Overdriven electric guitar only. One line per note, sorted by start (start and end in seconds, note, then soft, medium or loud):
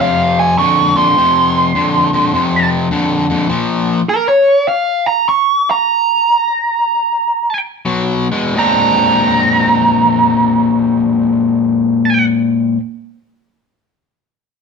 0.00 0.54 F2 medium
0.00 0.54 C3 medium
0.58 0.92 F2 medium
0.58 0.93 D3 medium
0.96 1.14 F2 medium
0.96 1.14 D3 medium
1.17 1.71 F2 medium
1.17 1.71 C3 medium
1.75 2.09 F2 medium
1.75 2.09 D3 medium
2.13 2.31 F2 medium
2.13 2.31 D3 medium
2.34 2.87 F2 medium
2.34 2.88 C3 medium
2.91 3.25 F2 medium
2.91 3.25 D3 medium
3.30 3.48 F2 medium
3.30 3.48 D3 medium
3.49 3.99 A#2 medium
3.49 3.99 F3 medium
7.85 8.27 B2 medium
7.85 8.27 F#3 medium
8.32 8.54 B2 medium
8.32 8.54 G#3 medium
8.55 12.77 A#2 medium
8.55 12.78 G#3 medium
8.55 12.79 C4 medium
8.55 12.80 D4 medium